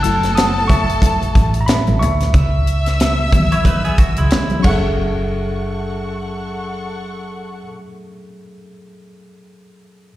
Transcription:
Already playing: F#1 A4 A5 F#6
0.03 F#3 A3 E4 A5 E6, closed hi-hat
0.23 snare, closed hi-hat
0.35 F#5 D#6, snare, closed hi-hat
0.68 E5 C#6, kick, closed hi-hat, high conga, low conga
0.89 closed hi-hat
1.02 kick, closed hi-hat, muted conga, high conga
1.21 muted fingered electric bass stroke, closed hi-hat, muted conga
1.35 A1, kick, closed hi-hat
1.54 closed hi-hat
1.61 A#5
1.66 E5 B5, snare, closed hi-hat, muted conga
1.87 A1, closed hi-hat, muted conga, high conga
1.99 D2 E5 C#6, closed hi-hat, low conga
2.20 snare, closed hi-hat
2.34 C#2 E5 E6, kick, closed hi-hat, muted conga, low conga
2.67 closed hi-hat
2.86 snare, closed hi-hat
3.00 snare, closed hi-hat
3.19 muted conga
3.32 D#3 E3 F#3 B3, kick, closed hi-hat, high conga, low conga
3.52 E4 C#5, closed hi-hat
3.65 D#4 B4, kick, closed hi-hat, muted conga, high conga
3.85 B3 G#4, closed hi-hat
3.98 F#4, muted fingered electric bass stroke, kick, closed hi-hat
4.16 C#2 G#3 E4, closed hi-hat
4.30 snare, closed hi-hat, muted conga
4.50 closed hi-hat, muted conga, high conga
4.59 F#3 C#4
4.64 F#1 G#4 A4 F#5 C#6, kick, crash, high conga
4.69 E5

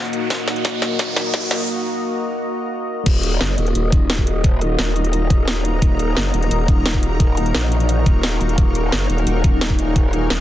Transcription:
Already playing: A#3 D#4 F#4 A#4 D#5 F#5 A#5, riser
0.13 closed hi-hat
0.30 kick, snare, closed hi-hat
0.48 snare, closed hi-hat
0.56 closed hi-hat
0.65 kick, snare, closed hi-hat
0.82 snare, closed hi-hat
0.99 kick, snare, closed hi-hat
1.16 snare, closed hi-hat
1.34 kick, snare, closed hi-hat
1.51 snare, closed hi-hat
3.06 D#1 A#3 D#4 F#4 D#5, kick, closed hi-hat, crash
3.12 A#4
3.23 closed hi-hat
3.41 F#1, snare, closed hi-hat
3.58 D#1 A#5, closed hi-hat
3.67 closed hi-hat
3.75 D#1, closed hi-hat
3.92 D#1, kick, closed hi-hat
4.10 snare, closed hi-hat
4.18 kick
4.27 closed hi-hat
4.44 kick, closed hi-hat
4.61 closed hi-hat
4.79 D#1, snare, closed hi-hat
4.96 closed hi-hat
5.05 closed hi-hat
5.13 closed hi-hat
5.30 kick, closed hi-hat
5.48 snare, closed hi-hat
5.65 closed hi-hat
5.82 D#1, kick, closed hi-hat
5.99 closed hi-hat
6.17 F#1, snare, closed hi-hat
6.34 D#1, closed hi-hat
6.43 closed hi-hat
6.51 D#1, closed hi-hat
6.68 D#1, kick, closed hi-hat
6.86 snare, closed hi-hat
6.94 kick
7.03 closed hi-hat
7.20 kick, closed hi-hat
7.37 closed hi-hat
7.46 closed hi-hat
7.55 A#1, snare, closed hi-hat
7.72 closed hi-hat
7.80 closed hi-hat
7.89 closed hi-hat
8.06 D#1, kick, closed hi-hat
8.23 snare, closed hi-hat
8.41 D#1, closed hi-hat
8.49 closed hi-hat
8.58 D#1 G#4, kick, closed hi-hat
8.75 closed hi-hat
8.92 F#1, snare, closed hi-hat
9.10 D#1 C#5, closed hi-hat
9.18 closed hi-hat
9.27 D#1, closed hi-hat
9.44 D#1, kick, closed hi-hat
9.61 snare, closed hi-hat
9.70 kick
9.79 closed hi-hat
9.96 kick, closed hi-hat
10.13 closed hi-hat
10.30 D#1, snare, closed hi-hat

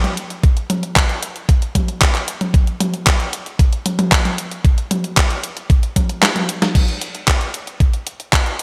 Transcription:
0.04 closed hi-hat, high tom
0.17 closed hi-hat
0.30 closed hi-hat
0.44 kick, closed hi-hat
0.57 closed hi-hat
0.70 closed hi-hat, high tom
0.83 closed hi-hat
0.96 kick, clap, closed hi-hat
1.09 closed hi-hat
1.23 closed hi-hat
1.36 closed hi-hat
1.49 kick, closed hi-hat
1.62 closed hi-hat
1.75 kick, closed hi-hat, high tom
1.88 closed hi-hat
2.01 kick, clap, closed hi-hat
2.15 clap, closed hi-hat
2.28 closed hi-hat
2.41 closed hi-hat, high tom
2.54 kick, closed hi-hat
2.67 closed hi-hat
2.80 closed hi-hat, high tom
2.94 closed hi-hat
3.07 kick, clap, closed hi-hat
3.20 closed hi-hat
3.33 closed hi-hat
3.46 closed hi-hat
3.59 kick, closed hi-hat
3.73 closed hi-hat
3.86 closed hi-hat, high tom
3.99 closed hi-hat, high tom
4.12 kick, clap, closed hi-hat
4.25 closed hi-hat, high tom
4.38 closed hi-hat
4.51 closed hi-hat
4.65 kick, closed hi-hat
4.78 closed hi-hat
4.91 closed hi-hat, high tom
5.04 closed hi-hat
5.17 kick, clap, closed hi-hat
5.30 closed hi-hat
5.43 closed hi-hat
5.57 closed hi-hat
5.70 kick, closed hi-hat
5.83 closed hi-hat
5.96 kick, closed hi-hat, high tom
6.09 closed hi-hat
6.23 snare, clap, closed hi-hat
6.36 closed hi-hat, high tom
6.49 closed hi-hat
6.62 snare, closed hi-hat, high tom
6.75 kick, closed hi-hat, crash
6.88 closed hi-hat
7.01 closed hi-hat
7.15 closed hi-hat
7.28 kick, clap, closed hi-hat
7.41 closed hi-hat
7.54 closed hi-hat
7.67 closed hi-hat
7.80 kick, closed hi-hat
7.93 closed hi-hat
8.07 closed hi-hat
8.20 closed hi-hat
8.33 kick, clap, closed hi-hat
8.46 closed hi-hat
8.59 closed hi-hat

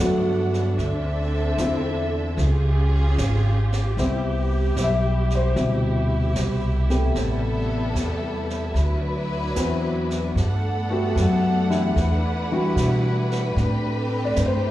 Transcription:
Already playing: D3 A3 B3 D4 G4 A4 B4 F#5
0.00 G2 F#3 A3 B3 F#4
0.54 snare
0.78 D2 D3 C4 A4 E5, brush sweep, snare
1.58 E2 D3 C4 E4 F4, snare, hi-hat pedal
2.37 C#2 C#4 F4 G4 G#4, brush sweep, snare
3.18 G#1, snare, hi-hat pedal
3.72 snare
3.97 C2 G3 B3 C4 E4, brush sweep, snare
4.77 B1, snare, hi-hat pedal
4.84 E5
5.30 snare
5.35 C5
5.55 D2 B2 C3 G3 E4, brush sweep, snare
6.35 C2, snare, hi-hat pedal
6.90 C3 A3 B3 G4, snare
7.15 A1 G3 B3 A4, brush sweep, snare
7.95 E2, snare, hi-hat pedal
8.50 snare
8.74 D2 F#3 D4 B4, brush sweep, snare
9.55 E2 E3 B3 C4 F#4, snare, hi-hat pedal
10.10 snare
10.36 G2 A3 B3 A4 F#5, brush sweep, snare
10.90 A3 B3 F#4 G4
11.16 F#2, snare, hi-hat pedal
11.22 F#5
11.69 E3 D4 E4 G4, snare
11.75 E5
11.96 E2 E4 B4, brush sweep, snare
12.52 E3 G3 D4 F#4
12.76 B2, snare, hi-hat pedal
13.31 snare
13.56 A2 A3 C4 G4, brush sweep, snare
14.25 D5
14.36 G2, snare, hi-hat pedal
14.46 C5
14.66 E4

